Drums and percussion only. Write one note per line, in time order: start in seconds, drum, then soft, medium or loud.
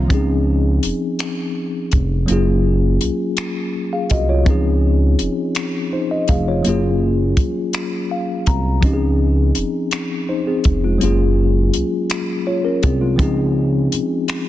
0.10 kick medium
0.10 closed hi-hat medium
0.83 closed hi-hat medium
1.19 finger snap medium
1.19 closed hi-hat medium
1.92 kick medium
1.92 closed hi-hat medium
2.28 closed hi-hat medium
3.01 closed hi-hat medium
3.37 finger snap medium
3.37 closed hi-hat medium
4.10 kick medium
4.10 closed hi-hat medium
4.46 kick loud
4.46 closed hi-hat medium
5.19 closed hi-hat medium
5.55 finger snap medium
5.55 closed hi-hat medium
6.28 kick medium
6.28 closed hi-hat medium
6.64 closed hi-hat medium
7.37 kick medium
7.37 closed hi-hat medium
7.73 finger snap medium
7.73 closed hi-hat medium
8.46 kick medium
8.46 closed hi-hat medium
8.82 kick medium
8.82 closed hi-hat medium
9.55 closed hi-hat medium
9.91 finger snap medium
9.91 closed hi-hat medium
10.64 kick medium
10.64 closed hi-hat medium
11.01 closed hi-hat medium
11.74 closed hi-hat medium
12.10 finger snap medium
12.10 closed hi-hat medium
12.83 kick medium
12.83 closed hi-hat medium
13.19 kick medium
13.19 closed hi-hat medium
13.92 closed hi-hat medium
14.28 finger snap medium
14.28 closed hi-hat medium